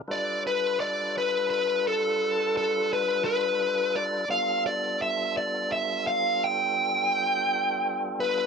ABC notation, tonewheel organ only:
X:1
M:12/8
L:1/8
Q:3/8=57
K:Gdor
V:1 name="Tonewheel organ"
[G,DFA=B]12 | [G,=B,DFA]12 |]